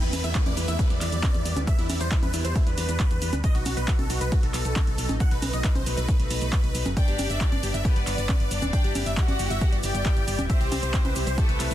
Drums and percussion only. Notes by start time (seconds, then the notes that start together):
0.02 closed hi-hat
0.13 open hi-hat, high conga, shaker
0.24 closed hi-hat, shaker
0.35 kick, clap, closed hi-hat, shaker
0.46 closed hi-hat, high conga
0.57 open hi-hat, shaker
0.68 closed hi-hat, shaker
0.79 kick, closed hi-hat, shaker
0.90 closed hi-hat
1.01 clap, open hi-hat, shaker
1.12 closed hi-hat, shaker
1.23 kick, clap, closed hi-hat, high conga, shaker
1.34 closed hi-hat
1.46 open hi-hat, shaker
1.57 closed hi-hat, high conga, shaker
1.67 kick, closed hi-hat, shaker
1.79 closed hi-hat
1.90 open hi-hat, high conga, shaker
2.01 closed hi-hat, shaker
2.11 kick, clap, closed hi-hat, shaker
2.23 closed hi-hat, high conga
2.34 open hi-hat, shaker
2.45 closed hi-hat, shaker
2.56 kick, closed hi-hat, shaker
2.67 closed hi-hat
2.78 open hi-hat, shaker
2.89 closed hi-hat, shaker
3.00 kick, clap, closed hi-hat, shaker
3.11 closed hi-hat
3.22 open hi-hat, shaker
3.33 closed hi-hat, high conga, shaker
3.44 kick, closed hi-hat, shaker
3.55 closed hi-hat
3.66 open hi-hat, high conga, shaker
3.77 closed hi-hat, shaker
3.88 kick, clap, closed hi-hat, shaker
3.99 closed hi-hat, high conga
4.10 open hi-hat, shaker
4.21 closed hi-hat, shaker
4.32 kick, closed hi-hat, shaker
4.43 closed hi-hat
4.54 clap, open hi-hat, shaker
4.65 closed hi-hat, shaker
4.76 kick, clap, closed hi-hat, high conga, shaker
4.87 closed hi-hat
4.98 open hi-hat, shaker
5.09 closed hi-hat, high conga, shaker
5.20 kick, closed hi-hat, shaker
5.31 closed hi-hat
5.42 open hi-hat, high conga, shaker
5.53 closed hi-hat, shaker
5.64 kick, clap, closed hi-hat, shaker
5.75 closed hi-hat, high conga
5.86 open hi-hat, shaker
5.97 closed hi-hat, shaker
6.09 kick, closed hi-hat, shaker
6.20 closed hi-hat
6.31 open hi-hat, shaker
6.42 closed hi-hat, shaker
6.53 kick, clap, closed hi-hat, shaker
6.64 closed hi-hat
6.75 open hi-hat, shaker
6.86 closed hi-hat, high conga, shaker
6.97 kick, closed hi-hat, shaker
7.08 closed hi-hat
7.19 open hi-hat, high conga, shaker
7.30 closed hi-hat, shaker
7.41 kick, clap, closed hi-hat, shaker
7.52 closed hi-hat, high conga
7.63 open hi-hat, shaker
7.74 closed hi-hat, shaker
7.85 kick, closed hi-hat, shaker
7.96 closed hi-hat
8.07 clap, open hi-hat, shaker
8.18 closed hi-hat, shaker
8.29 kick, clap, closed hi-hat, high conga, shaker
8.40 closed hi-hat
8.51 open hi-hat, shaker
8.62 closed hi-hat, high conga, shaker
8.73 kick, closed hi-hat, shaker
8.84 closed hi-hat
8.95 open hi-hat, high conga, shaker
9.06 closed hi-hat, shaker
9.17 kick, clap, closed hi-hat, shaker
9.28 closed hi-hat, high conga
9.39 open hi-hat, shaker
9.50 closed hi-hat, shaker
9.61 kick, closed hi-hat, shaker
9.72 closed hi-hat
9.83 open hi-hat, shaker
9.95 closed hi-hat, shaker
10.06 kick, clap, closed hi-hat, shaker
10.17 closed hi-hat
10.28 open hi-hat, shaker
10.39 closed hi-hat, high conga, shaker
10.50 kick, closed hi-hat, shaker
10.61 closed hi-hat
10.72 open hi-hat, high conga, shaker
10.83 closed hi-hat, shaker
10.94 kick, clap, closed hi-hat, shaker
11.05 closed hi-hat, high conga
11.16 open hi-hat, shaker
11.27 closed hi-hat, shaker
11.38 kick, closed hi-hat, shaker
11.49 closed hi-hat
11.60 clap, open hi-hat, shaker
11.71 closed hi-hat, shaker